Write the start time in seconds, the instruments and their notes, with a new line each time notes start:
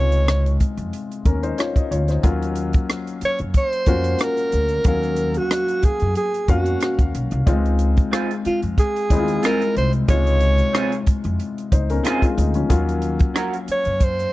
Already playing: upright bass C#2, grand piano C3 G#3 C4 D#4 F4, alto saxophone C#5
0.12 closed hi-hat
0.28 cross-stick, closed hi-hat
0.46 closed hi-hat
0.60 muted upright bass stroke, kick, closed hi-hat
0.77 upright bass F2, closed hi-hat
0.93 closed hi-hat
1.12 closed hi-hat
1.25 upright bass D#2, grand piano C#4 A#4, kick, closed hi-hat
1.43 grand piano D#4 C5, closed hi-hat
1.58 grand piano F4 C#5, cross-stick, closed hi-hat
1.76 grand piano D#5, kick, closed hi-hat
1.91 upright bass D2, grand piano F4 C#5, closed hi-hat
2.08 grand piano D#4 C5, cross-stick, closed hi-hat
2.23 upright bass D#2, grand piano F#3 A#3 C#4 F4, kick, closed hi-hat
2.42 closed hi-hat
2.56 closed hi-hat
2.73 kick, closed hi-hat
2.90 cross-stick, closed hi-hat
3.07 closed hi-hat
3.21 alto saxophone C#5, muted upright bass stroke, closed hi-hat
3.38 upright bass F#2, closed hi-hat
3.54 alto saxophone C5, kick, closed hi-hat
3.73 closed hi-hat
3.86 upright bass F2, grand piano A#3 C#4 F4 F#4, kick, closed hi-hat
4.04 closed hi-hat
4.19 cross-stick, closed hi-hat
4.23 alto saxophone A#4
4.37 closed hi-hat
4.52 upright bass D2, closed hi-hat
4.68 closed hi-hat
4.84 upright bass D#2, grand piano F#3 A#3 C#4 F5, alto saxophone A#4, kick, closed hi-hat
5.03 closed hi-hat
5.16 closed hi-hat
5.34 alto saxophone F#4, closed hi-hat
5.51 cross-stick, closed hi-hat
5.68 closed hi-hat
5.83 alto saxophone G#4, muted upright bass stroke, kick, closed hi-hat
6.00 upright bass F#2, closed hi-hat
6.15 alto saxophone G#4, closed hi-hat
6.34 closed hi-hat
6.48 upright bass F2, grand piano A#3 C#4 F#4 F5, alto saxophone F#4, kick, closed hi-hat
6.66 closed hi-hat
6.81 cross-stick, closed hi-hat
6.99 upright bass D#2, kick, closed hi-hat
7.15 upright bass B1, closed hi-hat
7.31 upright bass C2, closed hi-hat
7.46 upright bass C#2, grand piano G#3 C4 D#4 F4, kick, closed hi-hat
7.66 closed hi-hat
7.79 closed hi-hat
7.97 kick, closed hi-hat
8.11 clean electric guitar C4 F4 G#4, cross-stick, closed hi-hat
8.31 closed hi-hat
8.45 alto saxophone F4, muted upright bass stroke, closed hi-hat
8.62 upright bass F2, closed hi-hat
8.78 alto saxophone G#4, kick, closed hi-hat
8.96 closed hi-hat
9.10 upright bass D#2, grand piano G#3 C4 D#4 E4, kick, closed hi-hat
9.18 grand piano F4
9.28 closed hi-hat
9.42 clean electric guitar C4 F4 G#4, alto saxophone A#4, cross-stick, closed hi-hat
9.61 closed hi-hat
9.76 upright bass C2, alto saxophone C5, closed hi-hat
9.93 closed hi-hat
10.08 upright bass C#2, grand piano C3 G#3 D#4 F4, alto saxophone C#5, kick, closed hi-hat
10.27 closed hi-hat
10.40 closed hi-hat
10.58 closed hi-hat
10.73 clean electric guitar C4 F4 G#4, cross-stick, closed hi-hat
10.92 closed hi-hat
11.07 muted upright bass stroke, kick, closed hi-hat
11.24 upright bass F2, closed hi-hat
11.40 closed hi-hat
11.58 closed hi-hat
11.72 upright bass C#2, grand piano D#4 C5, kick, closed hi-hat
11.90 grand piano C#4 A#4, closed hi-hat
12.04 clean electric guitar C4 F4 G#4, grand piano C4 G#4, cross-stick, closed hi-hat
12.22 grand piano G#3 F4, kick, closed hi-hat
12.37 upright bass D2, grand piano D#4, closed hi-hat
12.54 grand piano F3 C#4, closed hi-hat
12.69 upright bass D#2, grand piano F#3 A#3 C#4 F4, kick, closed hi-hat
12.89 closed hi-hat
13.02 closed hi-hat
13.19 kick, closed hi-hat
13.34 clean electric guitar C#4 F#4 A#4, cross-stick, closed hi-hat
13.53 closed hi-hat
13.68 alto saxophone C#5, muted upright bass stroke, closed hi-hat
13.85 upright bass F#2, closed hi-hat
14.00 alto saxophone C5, kick, closed hi-hat
14.19 closed hi-hat